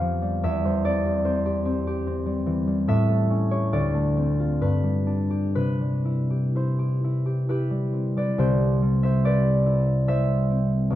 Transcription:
Already playing: F2 G3 B3 G4 B4 F5 G5 B5
0.01 F3
0.22 G3
0.43 E2 E5
0.65 G3 C5
0.84 C4 D5
1.04 G4
1.25 C4 C5
1.45 G4
1.65 C4
1.87 G4
2.07 C4
2.26 G3
2.46 E3
2.67 G3
2.88 A2 E5
3.08 A3
3.30 C#4
3.51 G4 C#5
3.72 D2 D5
3.94 A3
4.17 C4
4.40 F4
4.61 G2 B4
4.83 G3
5.07 D4
5.30 G4
5.55 C3 B4
5.81 G3
6.05 E4
6.30 G4
6.55 E4 C5
6.79 G4
7.04 E4
7.26 G4
7.49 E4 G4 B4
7.70 G3
7.93 C4
8.16 G3 B4 D5
8.38 C2 C3 G4 C5
8.82 G3
9.03 C5 E5
9.24 G4 B4 D5
9.66 E4
10.08 G3 C5 E5
10.50 C4
10.90 B1

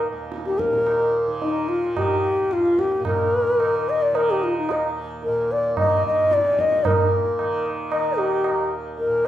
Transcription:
Already playing: D#2 A#2 D#3
0.12 D#2
0.32 tabla te
0.46 G4, tabla te
0.59 A#4, tabla ke
0.70 A#2, tabla te
0.87 tabla na
1.28 D#3
1.42 D#4, tabla tin
1.69 F4
1.85 D#3
1.97 G4, tabla na, tabla ge
2.42 D#2
2.51 F4, tabla te
2.66 tabla te
2.79 G4, tabla ke
2.92 tabla te
3.00 A#2
3.05 A#4, tabla na, tabla ge
3.56 D#3, tabla na
3.89 D#5
4.02 D5
4.13 D#3 A#4, tabla na
4.31 G4
4.42 F4, tabla na
4.57 D#4
4.69 D#2 D#5, tabla na
5.23 A#4, tabla tin
5.27 A#2
5.52 D5
5.77 D#5, tabla na, tabla ge
5.83 D#3
6.04 D#5, tabla ge
6.31 D5, tabla te
6.39 D#3
6.44 tabla te
6.59 D#5, tabla ke
6.72 tabla te
6.85 A#2 A#4, tabla na, tabla ge
7.39 D#3, tabla na
7.66 tabla na
7.91 D#3 D#5, tabla na
8.18 G4, tabla na
8.44 tabla na
8.51 D#2
8.97 A#4, tabla tin
9.07 A#2
9.25 tabla na

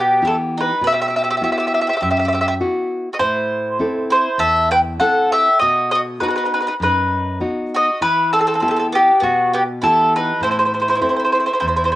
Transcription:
Already playing: B2 B3
0.00 G4
0.22 E3 B3 E4 G4
0.27 A4
0.58 D#4 B4
0.81 B2 B4
0.87 E5
0.92 G4 E5
1.01 G4 E5
1.08 G4 E5
1.16 G4 E5
1.24 G4 E5
1.30 G4 E5
1.37 G4 E5
1.41 B3 E4 F#4 G4 E5
1.52 G4 E5
1.58 G4 E5
1.67 G4 E5
1.74 G4 E5
1.81 G4 E5
1.87 G4 E5
1.93 G4 E5
2.01 F#2 G4 E5
2.11 G4 E5
2.17 G4 E5
2.25 G4 E5
2.33 G4 E5
2.41 G4 E5
2.48 G4 E5
2.61 B3 E4 F#4
3.13 F#4 D#5
3.19 A2 E4 C5
3.79 C4 E4 A4
4.10 E4 C5
4.38 E2 A4 E5
4.71 B4 G5
5.00 C4 E4 A4 F#5
5.32 G4 E5
5.59 B2 F#4 D#5
5.91 F#4 D#5
6.20 B3 D#4 F#4 B4
6.28 D#4 B4
6.36 D#4 B4
6.45 D#4 B4
6.54 D#4 B4
6.60 D#4 B4
6.67 D#4 B4
6.80 F#2 D#4 B4
7.40 B3 D#4 F#4
7.74 F#4 D#5
8.01 E3 E4 B4
8.33 C4 A4
8.39 C4 A4
8.47 C4 A4
8.54 C4 A4
8.60 B3 C4 E4 G4 A4
8.68 C4 A4
8.76 C4 A4
8.92 B3 G4
9.20 B2 B3 F#4
9.54 B3 G4
9.82 E3 B3 E4 G4 A4
10.16 D#4 B4
10.41 A2 E4 C5
10.51 E4 C5
10.59 E4 C5
10.65 E4 C5
10.74 E4 C5
10.80 E4 C5
10.88 E4 C5
10.95 E4 C5
11.01 C4 E4 A4 C5
11.09 E4 C5
11.16 E4 C5
11.24 E4 C5
11.32 E4 C5
11.40 E4 C5
11.46 E4 C5
11.53 E4 C5
11.60 E2 E4 C5
11.68 E4 C5
11.76 E4 C5
11.84 E4 C5
11.92 E4 C5

